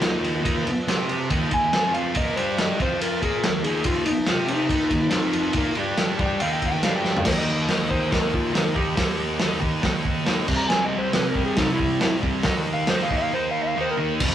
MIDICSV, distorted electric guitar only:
0, 0, Header, 1, 3, 480
1, 0, Start_track
1, 0, Tempo, 426136
1, 511, Time_signature, 4, 2, 24, 8
1, 9147, Tempo, 435098
1, 16018, End_track
2, 0, Start_track
2, 0, Title_t, "Distorted electric guitar"
2, 0, Program_c, 0, 30
2, 0, Note_on_c, 0, 51, 93
2, 11, Note_on_c, 0, 58, 89
2, 24, Note_on_c, 0, 63, 88
2, 458, Note_off_c, 0, 51, 0
2, 472, Note_on_c, 0, 51, 99
2, 481, Note_off_c, 0, 58, 0
2, 490, Note_off_c, 0, 63, 0
2, 494, Note_on_c, 0, 58, 109
2, 503, Note_on_c, 0, 63, 105
2, 726, Note_off_c, 0, 51, 0
2, 737, Note_off_c, 0, 58, 0
2, 742, Note_off_c, 0, 63, 0
2, 987, Note_on_c, 0, 60, 82
2, 992, Note_on_c, 0, 67, 92
2, 992, Note_on_c, 0, 72, 86
2, 1466, Note_off_c, 0, 60, 0
2, 1467, Note_on_c, 0, 51, 87
2, 1468, Note_off_c, 0, 67, 0
2, 1468, Note_off_c, 0, 72, 0
2, 1475, Note_on_c, 0, 63, 94
2, 1477, Note_on_c, 0, 58, 86
2, 1691, Note_off_c, 0, 58, 0
2, 1692, Note_off_c, 0, 51, 0
2, 1705, Note_on_c, 0, 58, 62
2, 1706, Note_on_c, 0, 51, 59
2, 1710, Note_off_c, 0, 63, 0
2, 1904, Note_off_c, 0, 51, 0
2, 1904, Note_off_c, 0, 58, 0
2, 1952, Note_on_c, 0, 53, 80
2, 1964, Note_on_c, 0, 60, 83
2, 1971, Note_on_c, 0, 65, 105
2, 2415, Note_off_c, 0, 60, 0
2, 2417, Note_off_c, 0, 65, 0
2, 2420, Note_on_c, 0, 58, 94
2, 2428, Note_off_c, 0, 53, 0
2, 2431, Note_on_c, 0, 65, 100
2, 2440, Note_on_c, 0, 70, 100
2, 2662, Note_off_c, 0, 58, 0
2, 2666, Note_on_c, 0, 55, 86
2, 2667, Note_off_c, 0, 65, 0
2, 2672, Note_off_c, 0, 70, 0
2, 2687, Note_on_c, 0, 62, 86
2, 2694, Note_on_c, 0, 67, 104
2, 3144, Note_off_c, 0, 55, 0
2, 3150, Note_on_c, 0, 53, 79
2, 3155, Note_off_c, 0, 62, 0
2, 3157, Note_on_c, 0, 60, 101
2, 3158, Note_off_c, 0, 67, 0
2, 3166, Note_on_c, 0, 65, 96
2, 3620, Note_off_c, 0, 60, 0
2, 3621, Note_off_c, 0, 65, 0
2, 3625, Note_off_c, 0, 53, 0
2, 3625, Note_on_c, 0, 58, 73
2, 3635, Note_on_c, 0, 65, 77
2, 3653, Note_on_c, 0, 70, 102
2, 3862, Note_off_c, 0, 58, 0
2, 3867, Note_off_c, 0, 65, 0
2, 3874, Note_on_c, 0, 51, 67
2, 3876, Note_off_c, 0, 70, 0
2, 3877, Note_on_c, 0, 58, 68
2, 4066, Note_off_c, 0, 51, 0
2, 4067, Note_off_c, 0, 58, 0
2, 4104, Note_on_c, 0, 51, 98
2, 4113, Note_on_c, 0, 58, 82
2, 4118, Note_on_c, 0, 63, 100
2, 4315, Note_off_c, 0, 51, 0
2, 4325, Note_off_c, 0, 58, 0
2, 4329, Note_on_c, 0, 51, 96
2, 4338, Note_on_c, 0, 58, 115
2, 4340, Note_off_c, 0, 63, 0
2, 4354, Note_on_c, 0, 63, 92
2, 4569, Note_off_c, 0, 51, 0
2, 4577, Note_off_c, 0, 58, 0
2, 4585, Note_off_c, 0, 63, 0
2, 4814, Note_on_c, 0, 60, 80
2, 4834, Note_on_c, 0, 67, 98
2, 4835, Note_on_c, 0, 72, 115
2, 5284, Note_on_c, 0, 51, 79
2, 5292, Note_off_c, 0, 60, 0
2, 5296, Note_on_c, 0, 58, 92
2, 5302, Note_off_c, 0, 67, 0
2, 5303, Note_off_c, 0, 72, 0
2, 5307, Note_on_c, 0, 63, 85
2, 5510, Note_off_c, 0, 51, 0
2, 5513, Note_off_c, 0, 58, 0
2, 5524, Note_on_c, 0, 51, 61
2, 5526, Note_on_c, 0, 58, 63
2, 5539, Note_off_c, 0, 63, 0
2, 5726, Note_off_c, 0, 51, 0
2, 5727, Note_off_c, 0, 58, 0
2, 5748, Note_on_c, 0, 53, 87
2, 5762, Note_on_c, 0, 60, 89
2, 5769, Note_on_c, 0, 65, 113
2, 6237, Note_off_c, 0, 53, 0
2, 6244, Note_off_c, 0, 60, 0
2, 6247, Note_off_c, 0, 65, 0
2, 6252, Note_on_c, 0, 58, 89
2, 6261, Note_on_c, 0, 65, 117
2, 6269, Note_on_c, 0, 70, 95
2, 6489, Note_off_c, 0, 58, 0
2, 6494, Note_off_c, 0, 65, 0
2, 6498, Note_off_c, 0, 70, 0
2, 6502, Note_on_c, 0, 55, 98
2, 6509, Note_on_c, 0, 62, 105
2, 6516, Note_on_c, 0, 67, 93
2, 6973, Note_off_c, 0, 55, 0
2, 6977, Note_off_c, 0, 62, 0
2, 6980, Note_off_c, 0, 67, 0
2, 6991, Note_on_c, 0, 55, 84
2, 6993, Note_on_c, 0, 62, 93
2, 7006, Note_on_c, 0, 67, 110
2, 7218, Note_off_c, 0, 55, 0
2, 7219, Note_off_c, 0, 62, 0
2, 7226, Note_off_c, 0, 67, 0
2, 7227, Note_on_c, 0, 51, 77
2, 7236, Note_on_c, 0, 58, 91
2, 7236, Note_on_c, 0, 63, 102
2, 7697, Note_off_c, 0, 51, 0
2, 7701, Note_off_c, 0, 58, 0
2, 7701, Note_off_c, 0, 63, 0
2, 7711, Note_on_c, 0, 55, 98
2, 7724, Note_on_c, 0, 62, 106
2, 7731, Note_on_c, 0, 67, 108
2, 8174, Note_on_c, 0, 51, 91
2, 8179, Note_off_c, 0, 55, 0
2, 8186, Note_off_c, 0, 62, 0
2, 8189, Note_off_c, 0, 67, 0
2, 8192, Note_on_c, 0, 58, 107
2, 8201, Note_on_c, 0, 63, 101
2, 8656, Note_off_c, 0, 51, 0
2, 8660, Note_on_c, 0, 51, 78
2, 8666, Note_off_c, 0, 58, 0
2, 8670, Note_on_c, 0, 58, 86
2, 8672, Note_off_c, 0, 63, 0
2, 8677, Note_on_c, 0, 63, 91
2, 8873, Note_off_c, 0, 51, 0
2, 8886, Note_on_c, 0, 51, 82
2, 8893, Note_off_c, 0, 58, 0
2, 8893, Note_off_c, 0, 63, 0
2, 8906, Note_on_c, 0, 58, 85
2, 8907, Note_on_c, 0, 63, 79
2, 9113, Note_off_c, 0, 51, 0
2, 9127, Note_on_c, 0, 51, 98
2, 9133, Note_off_c, 0, 58, 0
2, 9141, Note_off_c, 0, 63, 0
2, 9146, Note_on_c, 0, 58, 97
2, 9154, Note_on_c, 0, 63, 102
2, 9584, Note_off_c, 0, 51, 0
2, 9593, Note_off_c, 0, 58, 0
2, 9596, Note_off_c, 0, 63, 0
2, 9598, Note_on_c, 0, 51, 88
2, 9606, Note_on_c, 0, 58, 83
2, 9610, Note_on_c, 0, 63, 99
2, 9832, Note_off_c, 0, 51, 0
2, 9833, Note_off_c, 0, 58, 0
2, 9841, Note_off_c, 0, 63, 0
2, 9845, Note_on_c, 0, 51, 90
2, 9846, Note_on_c, 0, 58, 81
2, 9854, Note_on_c, 0, 63, 94
2, 10059, Note_off_c, 0, 51, 0
2, 10065, Note_off_c, 0, 58, 0
2, 10069, Note_off_c, 0, 63, 0
2, 10072, Note_on_c, 0, 51, 107
2, 10079, Note_on_c, 0, 58, 108
2, 10083, Note_on_c, 0, 63, 103
2, 10533, Note_off_c, 0, 51, 0
2, 10546, Note_on_c, 0, 51, 74
2, 10548, Note_off_c, 0, 58, 0
2, 10556, Note_off_c, 0, 63, 0
2, 10561, Note_on_c, 0, 58, 80
2, 10569, Note_on_c, 0, 63, 96
2, 10763, Note_off_c, 0, 51, 0
2, 10771, Note_off_c, 0, 58, 0
2, 10776, Note_on_c, 0, 51, 80
2, 10778, Note_off_c, 0, 63, 0
2, 10785, Note_on_c, 0, 58, 100
2, 10791, Note_on_c, 0, 63, 91
2, 11008, Note_off_c, 0, 51, 0
2, 11021, Note_off_c, 0, 58, 0
2, 11021, Note_on_c, 0, 51, 91
2, 11023, Note_off_c, 0, 63, 0
2, 11034, Note_on_c, 0, 58, 102
2, 11036, Note_on_c, 0, 63, 100
2, 11486, Note_off_c, 0, 51, 0
2, 11495, Note_off_c, 0, 58, 0
2, 11499, Note_on_c, 0, 51, 82
2, 11508, Note_on_c, 0, 58, 95
2, 11514, Note_off_c, 0, 63, 0
2, 11527, Note_on_c, 0, 63, 89
2, 11740, Note_off_c, 0, 51, 0
2, 11744, Note_off_c, 0, 58, 0
2, 11746, Note_on_c, 0, 48, 84
2, 11751, Note_on_c, 0, 55, 96
2, 11754, Note_off_c, 0, 63, 0
2, 11759, Note_on_c, 0, 60, 104
2, 11981, Note_off_c, 0, 48, 0
2, 11994, Note_on_c, 0, 48, 93
2, 11997, Note_off_c, 0, 60, 0
2, 11998, Note_off_c, 0, 55, 0
2, 12002, Note_on_c, 0, 55, 105
2, 12011, Note_on_c, 0, 60, 108
2, 12459, Note_off_c, 0, 48, 0
2, 12472, Note_on_c, 0, 48, 83
2, 12478, Note_off_c, 0, 55, 0
2, 12480, Note_off_c, 0, 60, 0
2, 12483, Note_on_c, 0, 55, 84
2, 12494, Note_on_c, 0, 60, 89
2, 12707, Note_off_c, 0, 48, 0
2, 12720, Note_off_c, 0, 60, 0
2, 12720, Note_on_c, 0, 48, 72
2, 12729, Note_off_c, 0, 55, 0
2, 12733, Note_on_c, 0, 55, 96
2, 12733, Note_on_c, 0, 60, 87
2, 12957, Note_off_c, 0, 48, 0
2, 12962, Note_off_c, 0, 60, 0
2, 12967, Note_off_c, 0, 55, 0
2, 12970, Note_on_c, 0, 48, 85
2, 12975, Note_on_c, 0, 60, 95
2, 12980, Note_on_c, 0, 55, 91
2, 13426, Note_off_c, 0, 48, 0
2, 13436, Note_off_c, 0, 55, 0
2, 13439, Note_on_c, 0, 48, 94
2, 13447, Note_off_c, 0, 60, 0
2, 13450, Note_on_c, 0, 55, 96
2, 13460, Note_on_c, 0, 60, 90
2, 13660, Note_off_c, 0, 48, 0
2, 13666, Note_off_c, 0, 55, 0
2, 13673, Note_off_c, 0, 60, 0
2, 13673, Note_on_c, 0, 48, 84
2, 13679, Note_on_c, 0, 55, 86
2, 13686, Note_on_c, 0, 60, 102
2, 13911, Note_off_c, 0, 48, 0
2, 13914, Note_off_c, 0, 55, 0
2, 13918, Note_off_c, 0, 60, 0
2, 13920, Note_on_c, 0, 51, 98
2, 13934, Note_on_c, 0, 63, 113
2, 13937, Note_on_c, 0, 58, 99
2, 14403, Note_off_c, 0, 51, 0
2, 14411, Note_off_c, 0, 58, 0
2, 14417, Note_on_c, 0, 51, 80
2, 14419, Note_off_c, 0, 63, 0
2, 14425, Note_on_c, 0, 58, 83
2, 14433, Note_on_c, 0, 63, 91
2, 14630, Note_off_c, 0, 51, 0
2, 14643, Note_off_c, 0, 58, 0
2, 14643, Note_on_c, 0, 51, 99
2, 14646, Note_off_c, 0, 63, 0
2, 14657, Note_on_c, 0, 58, 90
2, 14659, Note_on_c, 0, 63, 92
2, 14874, Note_off_c, 0, 51, 0
2, 14884, Note_off_c, 0, 58, 0
2, 14887, Note_on_c, 0, 51, 88
2, 14891, Note_off_c, 0, 63, 0
2, 14897, Note_on_c, 0, 58, 93
2, 14904, Note_on_c, 0, 63, 97
2, 15355, Note_off_c, 0, 51, 0
2, 15366, Note_off_c, 0, 58, 0
2, 15368, Note_on_c, 0, 51, 83
2, 15375, Note_off_c, 0, 63, 0
2, 15379, Note_on_c, 0, 58, 76
2, 15388, Note_on_c, 0, 63, 92
2, 15591, Note_off_c, 0, 51, 0
2, 15598, Note_off_c, 0, 58, 0
2, 15604, Note_on_c, 0, 51, 79
2, 15611, Note_on_c, 0, 58, 92
2, 15616, Note_off_c, 0, 63, 0
2, 15629, Note_on_c, 0, 63, 82
2, 15841, Note_off_c, 0, 51, 0
2, 15845, Note_off_c, 0, 58, 0
2, 15854, Note_off_c, 0, 63, 0
2, 15860, Note_on_c, 0, 41, 99
2, 15877, Note_on_c, 0, 48, 101
2, 15907, Note_on_c, 0, 53, 114
2, 16018, Note_off_c, 0, 41, 0
2, 16018, Note_off_c, 0, 48, 0
2, 16018, Note_off_c, 0, 53, 0
2, 16018, End_track
3, 0, Start_track
3, 0, Title_t, "Muted distorted electric guitar strokes"
3, 739, Note_on_c, 9, 29, 55
3, 852, Note_off_c, 9, 29, 0
3, 4583, Note_on_c, 9, 29, 52
3, 4696, Note_off_c, 9, 29, 0
3, 16018, End_track
0, 0, End_of_file